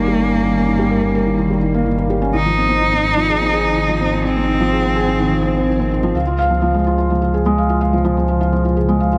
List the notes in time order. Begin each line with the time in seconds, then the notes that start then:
Already playing: G1 D#3 G3 A#3 C#4 D#4 A#4
0.08 G3
0.20 C#4
0.32 C#4
0.44 D#3
0.56 C#4
0.68 D#4
0.79 G3
0.91 A#4
1.03 C#4
1.15 A#4
1.27 D#3
1.38 D#3
1.50 G3
1.62 D#3
1.74 A#3
1.86 D#3
1.98 A#3
2.10 G4
2.22 C#4
2.34 G#1 D#3 D#4
2.46 F3
2.58 C4
2.69 C4
2.81 D#3
2.93 C4
3.05 D#4
3.17 F3
3.29 G#4
3.41 C4
3.53 G#4
3.65 D#3
3.77 D#3
3.89 F3
4.01 C4
4.12 C4
4.24 D#3 C4
4.37 C4
4.48 D#4
4.60 F3
4.72 G#4
4.84 C4
4.96 G#4
5.08 D#3
5.20 D#3
5.32 F3
5.44 C4
5.55 C4
5.68 D#3
5.79 C4
5.91 D#4
6.03 F3
6.15 C#2 F5
6.27 F4
6.39 F5
6.50 F3
6.62 F3
6.74 G#3
6.87 F4
6.98 F4
7.10 F3
7.22 F4
7.34 G#4
7.46 G#3
7.58 F5
7.69 F4
7.81 F5
7.93 F3
8.05 F3
8.17 G#3
8.28 F4
8.41 F4
8.53 F3
8.65 F4
8.77 G#4
8.88 G#3
9.00 F5
9.13 F4